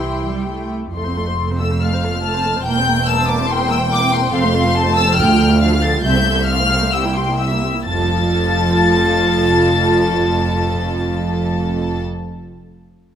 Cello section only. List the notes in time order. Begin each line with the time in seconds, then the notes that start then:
Already playing: E3
0.29 G3
0.51 A3
0.95 F2
2.66 E2
4.34 F2
5.18 D2
6.04 C2
7.87 F2